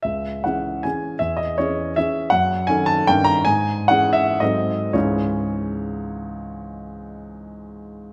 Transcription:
0.02 C#2 E5
0.44 E3 C#4 G#4 F#5
0.83 E3 C#4 G#4 G#5
1.19 E2 E5
1.37 D#5
1.58 E3 C#4 G#4 C#5
1.96 E3 C#4 G#4 E5
2.30 F#2 F#5
2.67 D#3 C#4 A4 G#5
2.86 A5
3.07 G2 D#3 C#4 A#4 G5
3.24 A#5
3.45 G#2 G#5
3.88 E3 C#4 G#4 F#5
4.13 E5
4.40 G#2 F#3 C4 A4 D#5
4.93 C#2 G#2 E3 G#3 C#4 E4 C#5

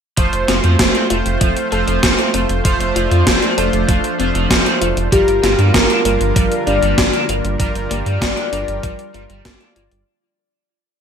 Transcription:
0.17 F1 F3 A3 C4 F4 C5, kick, closed hi-hat
0.33 F1, closed hi-hat
0.48 F1 F3 C4, snare, closed hi-hat
0.64 F2 F3, closed hi-hat
0.79 F1 F3, kick, snare, closed hi-hat
0.95 C4, closed hi-hat
1.10 F1 A3 F4 C5, closed hi-hat
1.26 F1, closed hi-hat
1.41 F1 F3, kick, closed hi-hat
1.57 closed hi-hat
1.72 F1 F3 A3 F4 A4 C5, closed hi-hat
1.88 F1 F3, closed hi-hat
2.03 F1 F3, kick, snare, closed hi-hat
2.19 C4, closed hi-hat
2.34 F1 A3 C4, closed hi-hat
2.49 F1, closed hi-hat
2.65 F1 F3 A3 D4 F4 C5, kick, closed hi-hat
2.80 F1, closed hi-hat
2.96 F1 F3 F4, closed hi-hat
3.11 F2 F3, closed hi-hat
3.27 F1 F3, kick, snare, closed hi-hat
3.42 C4, closed hi-hat
3.57 F1 A3 F4 A4 C5, closed hi-hat
3.73 F1, closed hi-hat
3.88 F1 F3, kick, closed hi-hat
4.04 closed hi-hat
4.19 F1 F3 A3 C4 F4 C5, closed hi-hat
4.35 F1 F3, closed hi-hat
4.50 F1 F3, kick, snare, closed hi-hat
4.66 C4, closed hi-hat
4.81 F1 A3 F4, closed hi-hat
4.97 F1, closed hi-hat
5.12 G1 D3 F3 G3 A#3 F4 G4 A#4, kick, closed hi-hat
5.28 G1, closed hi-hat
5.43 G1 G3 F4, snare, closed hi-hat
5.59 G2 G3, closed hi-hat
5.74 G1 F3 A#4, kick, snare, closed hi-hat
5.90 D4, closed hi-hat
6.05 G1 G3 A#3 F4 A#4, closed hi-hat
6.21 G1, closed hi-hat
6.36 G1 F3 G3, kick, closed hi-hat
6.52 closed hi-hat
6.66 G1 G3 D4 F4 A#4 D5, closed hi-hat
6.82 G1 G3, closed hi-hat
6.98 G1 F3, kick, snare, closed hi-hat
7.13 D4, closed hi-hat
7.29 G1 A#3 F4, closed hi-hat
7.44 G1, closed hi-hat
7.59 G1 F3 G3 F4 G4 A#4 D5, kick, closed hi-hat
7.75 G1, closed hi-hat
7.91 G1 G3 A#3, closed hi-hat
8.06 G2 G3, closed hi-hat
8.21 G1 F3, kick, snare, closed hi-hat
8.37 D4, closed hi-hat
8.52 G1 G3 A#3 D4 F4 A#4, closed hi-hat
8.68 G1, closed hi-hat
8.83 G1 F3 G3, kick, closed hi-hat
8.99 closed hi-hat
9.14 G1 G3 F4 A#4, closed hi-hat
9.30 G1 G3, closed hi-hat
9.45 G1 G3 F4 A#4 D5, kick, snare, closed hi-hat
9.61 D4, closed hi-hat
9.76 G1 A#3 F4, closed hi-hat
9.92 G1, closed hi-hat

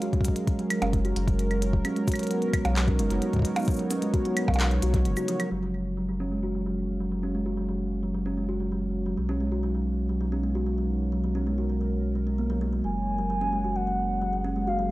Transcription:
Already playing: G#3 F#4 A#4 C#5 F5
0.02 F#4, closed hi-hat
0.13 F#3, kick, closed hi-hat
0.21 F#3, kick, closed hi-hat, shaker
0.28 kick
0.36 closed hi-hat
0.47 kick, closed hi-hat
0.59 F#3, closed hi-hat
0.70 F#3, closed hi-hat, claves
0.82 F#1 C#4, closed hi-hat, percussion blips
0.93 G#3, kick, closed hi-hat
1.05 F#4, closed hi-hat
1.16 F#1 F#3, closed hi-hat
1.28 F#3, kick, closed hi-hat
1.39 closed hi-hat
1.51 closed hi-hat, claves
1.62 F#3, closed hi-hat
1.73 F#3, kick
1.85 B3 C#4, closed hi-hat, claves
1.96 G#3, closed hi-hat
2.08 F#4, kick, closed hi-hat, shaker
2.12 closed hi-hat, claves
2.16 F#3, closed hi-hat
2.19 closed hi-hat
2.23 D#4, closed hi-hat
2.27 F#3, closed hi-hat
2.31 closed hi-hat
2.42 closed hi-hat
2.53 kick, closed hi-hat, claves
2.65 B1 F#3, closed hi-hat, percussion blips
2.76 F#3, clap, closed hi-hat
2.88 C#4, kick, closed hi-hat
2.99 F#1 G#3, closed hi-hat
3.10 F#1 F#4, closed hi-hat
3.22 F#3, closed hi-hat
3.33 F#3, kick, closed hi-hat
3.36 kick
3.39 kick
3.42 kick, closed hi-hat
3.56 closed hi-hat, percussion blips, shaker
3.59 shaker
3.62 shaker
3.65 F#3, closed hi-hat, shaker
3.68 kick, shaker
3.71 shaker
3.74 shaker
3.76 F#3, closed hi-hat, shaker
3.91 C#4, closed hi-hat, shaker
4.02 G#3, closed hi-hat
4.14 F#4, kick, closed hi-hat
4.25 F#3, closed hi-hat
4.37 F#3, closed hi-hat, claves
4.48 B1, kick, percussion blips
4.54 closed hi-hat, percussion blips
4.60 clap, closed hi-hat, percussion blips
4.71 F#3, closed hi-hat
4.82 B1 F#4, closed hi-hat
4.94 F#3, kick, closed hi-hat
5.05 F#1 C#3, closed hi-hat
5.17 F#4, closed hi-hat, claves, shaker
5.28 F3, closed hi-hat
5.40 F#3, closed hi-hat, claves
5.51 F#1 F#3 A#3
5.60 F#3 F5
5.97 F#3
6.09 F#3
6.20 C#4
6.30 G#3 G#4
6.43 F#4
6.55 F#3
6.66 F#3
7.00 F#3
7.12 F#3
7.23 C#4
7.35 G#3
7.46 F#4
7.57 F#3
7.69 F#3
8.03 F#3
8.14 F#3
8.26 C#4
8.37 G#3
8.49 F#4
8.60 F#3
8.72 F#3
9.06 F#3
9.18 B1 F#3 B3
9.23 D#4
9.29 C#4
9.40 G#3
9.52 F#4
9.63 F#3
9.75 F#3
10.09 F#3
10.21 F#3
10.32 C#4
10.43 G#3
10.50 A#4
10.55 F#4
10.66 F#3
10.78 F#3
11.12 F#3
11.24 F#3
11.35 C#4
11.47 G#3
11.58 F#4
11.70 F#3
11.81 F#3
12.15 F#3
12.27 G#3
12.38 A#3
12.50 F#3
12.61 G#3
12.73 F#3
12.84 F#1 F#3 A#3 G#5
12.92 F#5
13.18 F#3
13.30 F#3
13.41 C#4
13.53 G#3
13.64 F#4
13.76 F#3 F#5
13.87 F#3 G#4
14.22 F#3
14.33 F#3
14.45 C#4
14.56 G#3
14.67 F#4 F5
14.79 F#3

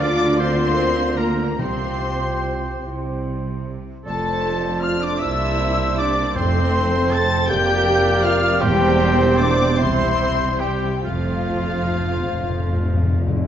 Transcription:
Already playing: D2 D3 A#3 F4 D5
0.00 D4 D5 D6
0.39 C4 C5 C6
1.17 A#3 A#4 A#5
1.58 C2 C3 G3 C4 F4 G4 C5 C6
2.84 C2 C3 G3 E4 C5
4.05 F1 F2 A3 D4 F4 A4 C5 A5
4.82 F4 F5 F6
5.01 D4 D5 D6
5.19 C2 C3 A#3 E4 G4 C5 E5 E6
5.98 D4 D5 D6
6.36 F1 F2 A3 C4 A4 C5 C6
7.11 A4 A5 A6
7.48 F1 F2 A#3 G4 D5 G5 G6
8.23 F4 F5 F6
8.60 E1 E2 G3 A#3 C4 G4 C5 G5
9.37 D4 D5 D6
9.76 C2 C3 G3 C4 E4 C5 C6
10.60 G3 G4 G5
11.04 F1 F2 F3 A3 F4 C5 F5
11.13 F2
11.22 F2
11.31 F2
11.40 F2
11.47 F2
11.57 F2
11.65 F2
11.73 F2
11.82 F2
11.90 F2
11.98 F2
12.07 F2
12.16 F2
12.25 F2
12.34 F1 F2
12.41 F2
12.49 F2
12.59 F2
12.68 F2
12.76 F2
12.85 F2
12.94 F2
13.02 F2
13.10 F2
13.20 F2
13.27 F2
13.36 F2
13.44 F2

